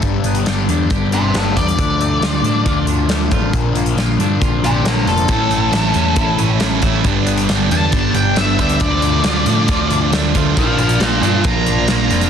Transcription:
<<
  \new Staff \with { instrumentName = "Lead electric guitar" } { \time 4/4 \key d \major \tempo 4 = 137 r2 r8 <g' e''>8 <e' cis''>8 d''8~ | d''2~ d''8 r4. | r2 r8 <g' e''>8 <f' cis''>8 a'8~ | a'2~ a'8 r4. |
r4. a''4 g''8 e''8 e''8 | d''2. r4 | <c'' a''>8 <c'' a''>8 <d'' bes''>8 <d'' bes''>8 bes''2 | }
  \new Staff \with { instrumentName = "Clean electric guitar" } { \time 4/4 \key d \major g,8 b8 g'8 d'8 g'8 d'8 b8 g'8 | d8 a8 f'8 d'8 f'8 d'8 a8 f'8 | bes,8 bes8 f'8 d'8 f'8 d'8 bes8 f'8 | a,8 a8 e'8 cis'8 e'8 cis'8 a8 e'8 |
g,8 b8 g'8 d'8 g'8 d'8 b8 g'8 | d8 a8 f'8 d'8 f'8 d'8 a8 f'8 | bes,8 bes8 f'8 d'8 f'8 d'8 bes8 f'8 | }
  \new Staff \with { instrumentName = "Distorted electric guitar" } { \time 4/4 \key d \major r1 | r1 | r1 | <a, e a cis' e'>4 <a, e a cis' e'>8 <a, e a cis' e'>8 <a, e a cis' e'>4 <a, a cis' e'>8 <a, e a cis' e'>8 |
<g, d g b d'>4 <g, d g b d'>8 <g, d g b d'>8 <g, d g b d'>4 <g, d g b d'>8 <g, d g b d'>8 | <d f a d'>4 <d f a d'>8 <d f a d'>8 <d f a d'>4 <d f a d'>8 <d f a d'>8 | <bes, f bes d'>4 <bes, f bes d'>8 <bes, f bes d'>8 <bes, f bes d'>4 <bes, f bes d'>8 <bes, f bes d'>8 | }
  \new Staff \with { instrumentName = "Overdriven electric guitar" } { \clef bass \time 4/4 \key d \major <g, d g b d'>4 <g, d g b d'>8 <g, d g b d'>8 <g, d g b d'>4 <g, d g b d'>8 <g, d g b d'>8 | <d f a d'>4 <d f a d'>8 <d f a d'>8 <d f a d'>4 <d f a d'>8 <d f a d'>8 | <bes, d f bes d'>4 <bes, d f bes d'>8 <bes, d f bes d'>8 <bes, d f bes d'>4 <bes, d f bes d'>8 <bes, d f bes d'>8 | <a, e a cis' e'>4 <a, e a cis' e'>8 <a, e a cis' e'>8 <a, e a cis' e'>4 <a, e a cis' e'>8 <a, e a cis' e'>8 |
<g, d g b d'>4 <g, d g b d'>8 <g, d g b d'>8 <g, d g b d'>4 <g, d g b d'>8 <g, d g b d'>8 | <d f a d'>4 <d f a d'>8 <d f a d'>8 <d f a d'>4 <d f a d'>8 <d f a d'>8 | <bes, f bes d'>4 <bes, f bes d'>8 <bes, f bes d'>8 <bes, f bes d'>4 <bes, f bes d'>8 <bes, f bes d'>8 | }
  \new Staff \with { instrumentName = "Picked electric bass" } { \clef bass \time 4/4 \key d \major g,,8 g,,8 r8 e,8 g,,8 g,,8 g,,8 e,8 | d,4 d,8 a,8 d,8 d,8 d,8 a,,8 | bes,,8 bes,,8 bes,,8 g,8 bes,,8 bes,,8 bes,,8 f,,8 | a,,4 a,,8 e,8 a,,8 a,,8 a,,8 a,,8 |
g,,8 g,,8 g,,8 e,8 g,,8 g,,8 g,,8 d,8 | d,4 d,8 a,8 d,8 d,8 d,8 d,8 | bes,,8 bes,,8 bes,,8 g,8 bes,,8 bes,,8 bes,,8 f,,8 | }
  \new DrumStaff \with { instrumentName = "Drums" } \drummode { \time 4/4 <hh bd>8 hh16 hh16 <hh sn>8 hh8 <hh bd>8 hh8 <hh sn>8 <hh bd sn>16 hh16 | <hh bd>8 hh8 <hh sn>8 hh8 <hh bd>8 hh8 <hh sn>8 <hh bd>8 | <hh bd>8 hh16 hh16 <hh sn>8 hh8 <hh bd>8 hh8 <hh sn>8 <hh sn>16 hh16 | <hh bd>8 hh8 <hh sn>8 hh8 <hh bd>8 hh8 <hh sn>8 <hh bd sn>8 |
<hh bd>8 hh16 hh16 <hh sn>8 hh8 <hh bd>8 hh8 <hh sn>8 <hh bd>16 hh16 | <hh bd>8 hh8 <hh sn>8 hh8 <hh bd>8 hh8 <hh sn>8 <hh bd>8 | <hh bd>8 hh16 hh16 <hh sn>8 hh8 <hh bd>8 hh8 <hh sn>8 hh16 hh16 | }
>>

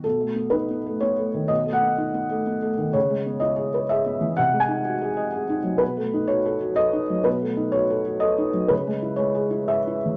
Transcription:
<<
  \new Staff \with { instrumentName = "Felt piano" } { \time 3/4 \key b \mixolydian \tempo 4 = 124 a'4 b'4 cis''4 | dis''8 fis''2 r8 | cis''4 dis''4 e''4 | fis''8 gis''2 r8 |
b'4 cis''4 dis''4 | b'4 cis''4 dis''4 | b'4 cis''4 e''4 | }
  \new Staff \with { instrumentName = "Felt piano" } { \time 3/4 \key b \mixolydian \tuplet 3/2 { b,8 a8 b8 dis'8 b8 a8 b8 a8 dis8 } | \tuplet 3/2 { b,8 a8 b8 dis'8 b8 a8 b8 a8 dis8 } | \tuplet 3/2 { cis8 gis8 b8 e'8 gis'8 b'8 gis'8 b8 e8 } | \tuplet 3/2 { bis,8 gis8 dis'8 fis'8 gis'8 dis''8 gis'8 dis'8 fis8 } |
\tuplet 3/2 { b,8 a8 dis'8 fis'8 a'8 fis'8 a'8 dis'8 fis8 } | \tuplet 3/2 { b,8 a8 dis'8 fis'8 a'8 fis'8 a'8 dis'8 fis8 } | \tuplet 3/2 { cis8 gis8 e'8 gis8 gis'8 e'8 gis'8 e'8 e8 } | }
>>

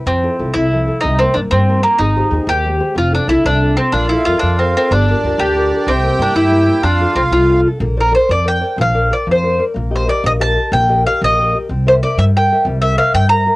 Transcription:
<<
  \new Staff \with { instrumentName = "Nylon-string guitar" } { \time 6/8 \key f \major \tempo 4. = 124 f8 <e' f' a'>8 <e' f' a'>8 c8 <f e' a'>8 <e' f' a'>8 | c8 <bes c' ees'>8 <bes c' ees'>8 g8 <bes c' ees'>8 <bes c' ees'>8 | aes8 <g' aes' c''>8 <g' aes' c''>8 ees8 <aes g' c''>8 <g' aes' c''>8 | f8 <d' f' a'>8 <d' f' a'>8 c8 <d' f' a'>8 <d' f' a'>8 |
bes8 <a' bes' d''>8 <a' bes' d''>8 f8 <a' bes' d''>8 <a' bes' d''>8 | g8 <f' g' bes'>8 <f' g' bes'>8 d8 <f' g' bes'>8 <f' g' bes'>8 | c8 <bes c' e'>8 <bes c' e'>8 g8 <bes c' e'>8 <bes c' e'>8 | f8 <d' f' a'>8 <d' f' a'>8 c8 <d' f' a'>8 <d' f' a'>8 |
\key bes \major bes8 <bes' c'' d''>8 <bes' c'' d''>8 f8 <bes' c'' d''>8 <bes' c'' d''>8 | f8 <bes' c'' d''>8 <bes' c'' d''>8 f8 <bes' c'' d''>8 <bes' c'' d''>8 | bes8 <g' bes' ees''>8 <g' bes' ees''>8 bes8 <g' bes' ees''>8 <g' bes' ees''>8 | bes8 <g' bes' ees''>8 <g' bes' ees''>8 bes8 <g' bes' ees''>8 <g' bes' ees''>8 |
c'8 <bes' c'' e''>8 <bes' c'' e''>8 g8 <bes' c'' e''>8 <bes' c'' e''>8 | g8 <bes' c'' e''>8 <bes' c'' e''>8 g8 <bes' c'' e''>8 <bes' c'' e''>8 | }
  \new Staff \with { instrumentName = "Accordion" } { \time 6/8 \key f \major r2. | r2. | r2. | r2. |
f'2. | d'2. | g'2. | f'2~ f'8 r8 |
\key bes \major r2. | r2. | r2. | r2. |
r2. | r2. | }
  \new Staff \with { instrumentName = "Mandolin" } { \time 6/8 \key f \major c'4. e'4. | ees'8 c'8 d'8 c'4 bes8 | ees'4. g'4. | f'8 d'8 e'8 d'4 c'8 |
d'8 e'8 f'8 d'8 c'8 c'8 | d'4. g'4. | c'4 d'8 e'4. | d'4 c'8 f'4 r8 |
\key bes \major r8 bes'8 c''8 d''8 g''4 | f''4 d''8 c''4 r8 | r8 c''8 d''8 ees''8 a''4 | g''4 f''8 ees''4 r8 |
r8 c''8 d''8 e''8 g''4 | r8 e''8 f''8 g''8 bes''4 | }
  \new Staff \with { instrumentName = "Upright bass" } { \clef bass \time 6/8 \key f \major f,4 c,8 c,4. | c,4 g,8 g,4. | aes,,4 ees,8 ees,4. | f,,4 c,8 c,4. |
bes,,4 f,8 f,4. | g,,4 d,8 d,4. | c,4 g,8 g,4. | f,4 c,8 c,4. |
\key bes \major bes,,4. f,4. | bes,,4. f,4. | bes,,4. bes,,4. | bes,,4. bes,,4. |
c,4. g,4. | c,4. g,4. | }
>>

